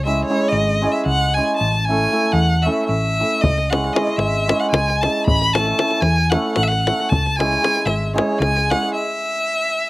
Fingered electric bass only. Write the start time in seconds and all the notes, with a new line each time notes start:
Already playing: C#2
0.52 G#1
1.06 C#2
1.61 A1
2.33 E2
2.89 A1
3.44 C#2
4.18 G#1
4.73 C#2
5.27 A1
6.02 E2
6.57 A1
7.11 C#2
7.86 G#1
8.40 C#2